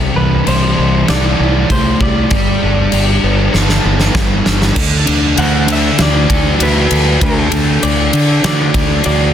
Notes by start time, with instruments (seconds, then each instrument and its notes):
Already playing: fingered electric bass C2, distorted electric guitar C3 A4
0.15 fingered electric bass C2, distorted electric guitar E3, clean electric guitar B4
0.46 fingered electric bass C2, distorted electric guitar G3, clean electric guitar C5, crash
0.77 fingered electric bass C2, distorted electric guitar E4
1.08 fingered electric bass C2, distorted electric guitar A4, clean electric guitar D5, snare, crash
1.39 fingered electric bass C2, distorted electric guitar E4
1.70 fingered electric bass C2, distorted electric guitar A3, clean electric guitar C5, kick, crash
2.00 fingered electric bass C2, distorted electric guitar G3, clean electric guitar D5, kick
2.30 fingered electric bass G1, distorted electric guitar G3, kick, crash
2.62 fingered electric bass G1, distorted electric guitar D4
2.92 fingered electric bass G1, distorted electric guitar D4, crash
3.23 fingered electric bass G1, distorted electric guitar B3
3.52 fingered electric bass G1, distorted electric guitar A4, snare
3.69 snare
3.84 fingered electric bass G1, distorted electric guitar B3
4.00 snare
4.14 fingered electric bass G1, distorted electric guitar G3, kick, snare
4.45 fingered electric bass G1, distorted electric guitar D4, snare
4.62 snare
4.76 fingered electric bass D2, distorted electric guitar D3, kick, crash
5.06 fingered electric bass D2, distorted electric guitar D4, ride
5.36 fingered electric bass D2, distorted electric guitar D3, clean electric guitar F#5, ride
5.67 distorted electric guitar D4, ride
5.72 clean electric guitar E5
5.98 fingered electric bass D2, distorted electric guitar F#4, snare, ride
6.02 clean electric guitar D5
6.29 fingered electric bass D2, distorted electric guitar A4, kick, ride
6.58 fingered electric bass D2, distorted electric guitar F#4, ride
6.63 clean electric guitar B4
6.89 fingered electric bass D2, distorted electric guitar A4, ride
7.21 fingered electric bass D2, distorted electric guitar D3, clean electric guitar A4, kick, ride
7.51 fingered electric bass D2, distorted electric guitar D4, ride
7.81 fingered electric bass D2, distorted electric guitar D3, clean electric guitar D5, ride
8.12 fingered electric bass D3, distorted electric guitar D4, ride
8.43 fingered electric bass D3, distorted electric guitar F#4, clean electric guitar D5, snare, ride
8.74 fingered electric bass D2, distorted electric guitar A4, kick, ride
9.04 fingered electric bass D2, distorted electric guitar F#4, clean electric guitar D5, ride